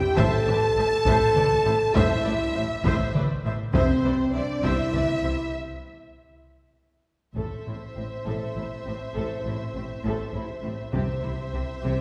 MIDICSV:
0, 0, Header, 1, 8, 480
1, 0, Start_track
1, 0, Key_signature, 0, "minor"
1, 0, Tempo, 594059
1, 146, Time_signature, 6, 3, 24, 8
1, 3506, Tempo, 604230
1, 6386, Tempo, 595238
1, 9647, End_track
2, 0, Start_track
2, 0, Title_t, "Violin section"
2, 0, Program_c, 0, 48
2, 0, Note_on_c, 0, 79, 81
2, 146, Note_off_c, 0, 79, 0
2, 159, Note_on_c, 0, 81, 108
2, 1558, Note_off_c, 0, 81, 0
2, 1589, Note_on_c, 0, 76, 97
2, 2529, Note_off_c, 0, 76, 0
2, 3021, Note_on_c, 0, 72, 80
2, 3471, Note_off_c, 0, 72, 0
2, 3513, Note_on_c, 0, 74, 77
2, 3747, Note_off_c, 0, 74, 0
2, 3749, Note_on_c, 0, 76, 79
2, 4465, Note_off_c, 0, 76, 0
2, 5904, Note_on_c, 0, 76, 41
2, 8745, Note_off_c, 0, 76, 0
2, 8791, Note_on_c, 0, 76, 53
2, 9647, Note_off_c, 0, 76, 0
2, 9647, End_track
3, 0, Start_track
3, 0, Title_t, "Violin section"
3, 0, Program_c, 1, 48
3, 0, Note_on_c, 1, 79, 91
3, 141, Note_off_c, 1, 79, 0
3, 141, Note_on_c, 1, 81, 109
3, 1577, Note_on_c, 1, 76, 90
3, 1578, Note_off_c, 1, 81, 0
3, 2542, Note_off_c, 1, 76, 0
3, 3021, Note_on_c, 1, 72, 82
3, 3471, Note_off_c, 1, 72, 0
3, 3502, Note_on_c, 1, 74, 78
3, 3736, Note_off_c, 1, 74, 0
3, 3736, Note_on_c, 1, 76, 80
3, 4459, Note_off_c, 1, 76, 0
3, 5906, Note_on_c, 1, 72, 43
3, 8746, Note_off_c, 1, 72, 0
3, 8773, Note_on_c, 1, 72, 56
3, 9647, Note_off_c, 1, 72, 0
3, 9647, End_track
4, 0, Start_track
4, 0, Title_t, "Viola section"
4, 0, Program_c, 2, 48
4, 135, Note_on_c, 2, 72, 83
4, 139, Note_on_c, 2, 76, 89
4, 362, Note_off_c, 2, 72, 0
4, 365, Note_off_c, 2, 76, 0
4, 381, Note_on_c, 2, 74, 60
4, 383, Note_on_c, 2, 71, 61
4, 446, Note_off_c, 2, 74, 0
4, 448, Note_off_c, 2, 71, 0
4, 626, Note_on_c, 2, 72, 63
4, 626, Note_on_c, 2, 76, 63
4, 691, Note_off_c, 2, 72, 0
4, 691, Note_off_c, 2, 76, 0
4, 859, Note_on_c, 2, 72, 81
4, 859, Note_on_c, 2, 76, 75
4, 1082, Note_off_c, 2, 72, 0
4, 1082, Note_off_c, 2, 76, 0
4, 1102, Note_on_c, 2, 74, 70
4, 1103, Note_on_c, 2, 71, 66
4, 1167, Note_off_c, 2, 74, 0
4, 1168, Note_off_c, 2, 71, 0
4, 1341, Note_on_c, 2, 72, 77
4, 1344, Note_on_c, 2, 76, 64
4, 1406, Note_off_c, 2, 72, 0
4, 1408, Note_off_c, 2, 76, 0
4, 1576, Note_on_c, 2, 72, 80
4, 1577, Note_on_c, 2, 76, 89
4, 1803, Note_off_c, 2, 72, 0
4, 1804, Note_off_c, 2, 76, 0
4, 1822, Note_on_c, 2, 71, 61
4, 1822, Note_on_c, 2, 74, 57
4, 1886, Note_off_c, 2, 71, 0
4, 1886, Note_off_c, 2, 74, 0
4, 2059, Note_on_c, 2, 76, 57
4, 2062, Note_on_c, 2, 72, 52
4, 2124, Note_off_c, 2, 76, 0
4, 2126, Note_off_c, 2, 72, 0
4, 2306, Note_on_c, 2, 72, 84
4, 2309, Note_on_c, 2, 76, 69
4, 2528, Note_off_c, 2, 72, 0
4, 2530, Note_off_c, 2, 76, 0
4, 2547, Note_on_c, 2, 74, 61
4, 2549, Note_on_c, 2, 71, 65
4, 2611, Note_off_c, 2, 74, 0
4, 2613, Note_off_c, 2, 71, 0
4, 2789, Note_on_c, 2, 72, 65
4, 2791, Note_on_c, 2, 76, 65
4, 2854, Note_off_c, 2, 72, 0
4, 2855, Note_off_c, 2, 76, 0
4, 3030, Note_on_c, 2, 72, 74
4, 3032, Note_on_c, 2, 76, 70
4, 3251, Note_off_c, 2, 72, 0
4, 3252, Note_off_c, 2, 76, 0
4, 3271, Note_on_c, 2, 71, 46
4, 3272, Note_on_c, 2, 74, 47
4, 3335, Note_off_c, 2, 71, 0
4, 3336, Note_off_c, 2, 74, 0
4, 3508, Note_on_c, 2, 76, 49
4, 3514, Note_on_c, 2, 72, 55
4, 3572, Note_off_c, 2, 76, 0
4, 3578, Note_off_c, 2, 72, 0
4, 3743, Note_on_c, 2, 76, 69
4, 3745, Note_on_c, 2, 72, 72
4, 3965, Note_off_c, 2, 76, 0
4, 3966, Note_off_c, 2, 72, 0
4, 3984, Note_on_c, 2, 74, 52
4, 3985, Note_on_c, 2, 71, 55
4, 4047, Note_off_c, 2, 74, 0
4, 4049, Note_off_c, 2, 71, 0
4, 4221, Note_on_c, 2, 72, 52
4, 4222, Note_on_c, 2, 76, 49
4, 4285, Note_off_c, 2, 72, 0
4, 4286, Note_off_c, 2, 76, 0
4, 5906, Note_on_c, 2, 69, 45
4, 6129, Note_off_c, 2, 69, 0
4, 6154, Note_on_c, 2, 64, 30
4, 6217, Note_off_c, 2, 64, 0
4, 6380, Note_on_c, 2, 60, 33
4, 6445, Note_off_c, 2, 60, 0
4, 6624, Note_on_c, 2, 69, 46
4, 6850, Note_off_c, 2, 69, 0
4, 6862, Note_on_c, 2, 64, 38
4, 6927, Note_off_c, 2, 64, 0
4, 7107, Note_on_c, 2, 60, 43
4, 7172, Note_off_c, 2, 60, 0
4, 7340, Note_on_c, 2, 69, 53
4, 7567, Note_off_c, 2, 69, 0
4, 7591, Note_on_c, 2, 64, 32
4, 7656, Note_off_c, 2, 64, 0
4, 7832, Note_on_c, 2, 60, 41
4, 7896, Note_off_c, 2, 60, 0
4, 8076, Note_on_c, 2, 69, 55
4, 8292, Note_off_c, 2, 69, 0
4, 8307, Note_on_c, 2, 64, 51
4, 8371, Note_off_c, 2, 64, 0
4, 8544, Note_on_c, 2, 60, 46
4, 8608, Note_off_c, 2, 60, 0
4, 8777, Note_on_c, 2, 67, 57
4, 9002, Note_off_c, 2, 67, 0
4, 9017, Note_on_c, 2, 64, 38
4, 9081, Note_off_c, 2, 64, 0
4, 9264, Note_on_c, 2, 60, 41
4, 9328, Note_off_c, 2, 60, 0
4, 9495, Note_on_c, 2, 67, 52
4, 9647, Note_off_c, 2, 67, 0
4, 9647, End_track
5, 0, Start_track
5, 0, Title_t, "French horn section"
5, 0, Program_c, 3, 60
5, 0, Note_on_c, 3, 67, 97
5, 139, Note_off_c, 3, 67, 0
5, 145, Note_on_c, 3, 69, 122
5, 1575, Note_on_c, 3, 64, 103
5, 1579, Note_off_c, 3, 69, 0
5, 2542, Note_off_c, 3, 64, 0
5, 3018, Note_on_c, 3, 60, 98
5, 3470, Note_off_c, 3, 60, 0
5, 3496, Note_on_c, 3, 62, 85
5, 3737, Note_on_c, 3, 64, 93
5, 3738, Note_off_c, 3, 62, 0
5, 4445, Note_off_c, 3, 64, 0
5, 5914, Note_on_c, 3, 64, 44
5, 5917, Note_on_c, 3, 60, 43
5, 8750, Note_off_c, 3, 64, 0
5, 8752, Note_off_c, 3, 60, 0
5, 8789, Note_on_c, 3, 60, 63
5, 8791, Note_on_c, 3, 64, 61
5, 9647, Note_off_c, 3, 60, 0
5, 9647, Note_off_c, 3, 64, 0
5, 9647, End_track
6, 0, Start_track
6, 0, Title_t, "Cello section"
6, 0, Program_c, 4, 48
6, 147, Note_on_c, 4, 45, 84
6, 212, Note_off_c, 4, 45, 0
6, 385, Note_on_c, 4, 45, 63
6, 449, Note_off_c, 4, 45, 0
6, 627, Note_on_c, 4, 45, 63
6, 691, Note_off_c, 4, 45, 0
6, 865, Note_on_c, 4, 45, 89
6, 930, Note_off_c, 4, 45, 0
6, 1099, Note_on_c, 4, 45, 62
6, 1164, Note_off_c, 4, 45, 0
6, 1338, Note_on_c, 4, 45, 67
6, 1402, Note_off_c, 4, 45, 0
6, 1577, Note_on_c, 4, 45, 91
6, 1642, Note_off_c, 4, 45, 0
6, 1823, Note_on_c, 4, 45, 67
6, 1887, Note_off_c, 4, 45, 0
6, 2065, Note_on_c, 4, 45, 59
6, 2129, Note_off_c, 4, 45, 0
6, 2298, Note_on_c, 4, 45, 98
6, 2363, Note_off_c, 4, 45, 0
6, 2553, Note_on_c, 4, 45, 56
6, 2618, Note_off_c, 4, 45, 0
6, 2783, Note_on_c, 4, 45, 63
6, 2847, Note_off_c, 4, 45, 0
6, 3021, Note_on_c, 4, 48, 75
6, 3085, Note_off_c, 4, 48, 0
6, 3268, Note_on_c, 4, 48, 59
6, 3333, Note_off_c, 4, 48, 0
6, 3506, Note_on_c, 4, 48, 54
6, 3570, Note_off_c, 4, 48, 0
6, 3743, Note_on_c, 4, 48, 76
6, 3806, Note_off_c, 4, 48, 0
6, 3983, Note_on_c, 4, 48, 45
6, 4047, Note_off_c, 4, 48, 0
6, 4217, Note_on_c, 4, 48, 49
6, 4280, Note_off_c, 4, 48, 0
6, 5905, Note_on_c, 4, 45, 45
6, 5969, Note_off_c, 4, 45, 0
6, 6150, Note_on_c, 4, 45, 35
6, 6213, Note_off_c, 4, 45, 0
6, 6391, Note_on_c, 4, 45, 32
6, 6456, Note_off_c, 4, 45, 0
6, 6624, Note_on_c, 4, 45, 54
6, 6689, Note_off_c, 4, 45, 0
6, 6875, Note_on_c, 4, 45, 33
6, 6939, Note_off_c, 4, 45, 0
6, 7119, Note_on_c, 4, 45, 41
6, 7183, Note_off_c, 4, 45, 0
6, 7355, Note_on_c, 4, 45, 53
6, 7419, Note_off_c, 4, 45, 0
6, 7594, Note_on_c, 4, 45, 42
6, 7659, Note_off_c, 4, 45, 0
6, 7836, Note_on_c, 4, 45, 41
6, 7901, Note_off_c, 4, 45, 0
6, 8064, Note_on_c, 4, 45, 70
6, 8128, Note_off_c, 4, 45, 0
6, 8300, Note_on_c, 4, 45, 42
6, 8365, Note_off_c, 4, 45, 0
6, 8531, Note_on_c, 4, 45, 44
6, 8596, Note_off_c, 4, 45, 0
6, 8775, Note_on_c, 4, 48, 64
6, 8839, Note_off_c, 4, 48, 0
6, 9012, Note_on_c, 4, 48, 44
6, 9076, Note_off_c, 4, 48, 0
6, 9266, Note_on_c, 4, 48, 44
6, 9331, Note_off_c, 4, 48, 0
6, 9513, Note_on_c, 4, 48, 64
6, 9577, Note_off_c, 4, 48, 0
6, 9647, End_track
7, 0, Start_track
7, 0, Title_t, "Double bass section"
7, 0, Program_c, 5, 48
7, 138, Note_on_c, 5, 33, 95
7, 202, Note_off_c, 5, 33, 0
7, 379, Note_on_c, 5, 33, 63
7, 443, Note_off_c, 5, 33, 0
7, 610, Note_on_c, 5, 33, 59
7, 675, Note_off_c, 5, 33, 0
7, 849, Note_on_c, 5, 33, 93
7, 913, Note_off_c, 5, 33, 0
7, 1088, Note_on_c, 5, 33, 62
7, 1152, Note_off_c, 5, 33, 0
7, 1326, Note_on_c, 5, 33, 68
7, 1390, Note_off_c, 5, 33, 0
7, 1566, Note_on_c, 5, 33, 83
7, 1630, Note_off_c, 5, 33, 0
7, 1811, Note_on_c, 5, 33, 61
7, 1876, Note_off_c, 5, 33, 0
7, 2055, Note_on_c, 5, 33, 62
7, 2120, Note_off_c, 5, 33, 0
7, 2296, Note_on_c, 5, 33, 86
7, 2360, Note_off_c, 5, 33, 0
7, 2531, Note_on_c, 5, 33, 62
7, 2595, Note_off_c, 5, 33, 0
7, 2772, Note_on_c, 5, 33, 62
7, 2837, Note_off_c, 5, 33, 0
7, 3015, Note_on_c, 5, 36, 87
7, 3079, Note_off_c, 5, 36, 0
7, 3250, Note_on_c, 5, 36, 53
7, 3314, Note_off_c, 5, 36, 0
7, 3491, Note_on_c, 5, 36, 52
7, 3555, Note_off_c, 5, 36, 0
7, 3736, Note_on_c, 5, 36, 83
7, 3799, Note_off_c, 5, 36, 0
7, 3967, Note_on_c, 5, 36, 51
7, 4030, Note_off_c, 5, 36, 0
7, 4205, Note_on_c, 5, 36, 49
7, 4268, Note_off_c, 5, 36, 0
7, 5902, Note_on_c, 5, 33, 47
7, 5965, Note_off_c, 5, 33, 0
7, 6144, Note_on_c, 5, 33, 35
7, 6207, Note_off_c, 5, 33, 0
7, 6382, Note_on_c, 5, 33, 33
7, 6446, Note_off_c, 5, 33, 0
7, 6623, Note_on_c, 5, 33, 54
7, 6688, Note_off_c, 5, 33, 0
7, 6859, Note_on_c, 5, 33, 38
7, 6923, Note_off_c, 5, 33, 0
7, 7104, Note_on_c, 5, 33, 41
7, 7168, Note_off_c, 5, 33, 0
7, 7349, Note_on_c, 5, 33, 56
7, 7414, Note_off_c, 5, 33, 0
7, 7585, Note_on_c, 5, 33, 41
7, 7650, Note_off_c, 5, 33, 0
7, 7830, Note_on_c, 5, 33, 42
7, 7894, Note_off_c, 5, 33, 0
7, 8069, Note_on_c, 5, 33, 67
7, 8133, Note_off_c, 5, 33, 0
7, 8296, Note_on_c, 5, 33, 47
7, 8361, Note_off_c, 5, 33, 0
7, 8541, Note_on_c, 5, 33, 46
7, 8606, Note_off_c, 5, 33, 0
7, 8778, Note_on_c, 5, 36, 65
7, 8843, Note_off_c, 5, 36, 0
7, 9016, Note_on_c, 5, 36, 44
7, 9081, Note_off_c, 5, 36, 0
7, 9260, Note_on_c, 5, 36, 44
7, 9324, Note_off_c, 5, 36, 0
7, 9502, Note_on_c, 5, 36, 69
7, 9566, Note_off_c, 5, 36, 0
7, 9647, End_track
8, 0, Start_track
8, 0, Title_t, "Taiko and cinematic ensemble drums"
8, 139, Note_on_c, 9, 41, 92
8, 220, Note_off_c, 9, 41, 0
8, 857, Note_on_c, 9, 41, 79
8, 938, Note_off_c, 9, 41, 0
8, 1099, Note_on_c, 9, 47, 63
8, 1180, Note_off_c, 9, 47, 0
8, 1581, Note_on_c, 9, 41, 100
8, 1661, Note_off_c, 9, 41, 0
8, 2295, Note_on_c, 9, 41, 78
8, 2376, Note_off_c, 9, 41, 0
8, 2541, Note_on_c, 9, 47, 61
8, 2622, Note_off_c, 9, 47, 0
8, 3018, Note_on_c, 9, 41, 93
8, 3099, Note_off_c, 9, 41, 0
8, 3742, Note_on_c, 9, 41, 74
8, 3822, Note_off_c, 9, 41, 0
8, 3982, Note_on_c, 9, 47, 58
8, 4061, Note_off_c, 9, 47, 0
8, 5908, Note_on_c, 9, 41, 44
8, 5988, Note_off_c, 9, 41, 0
8, 8779, Note_on_c, 9, 41, 55
8, 8860, Note_off_c, 9, 41, 0
8, 9647, End_track
0, 0, End_of_file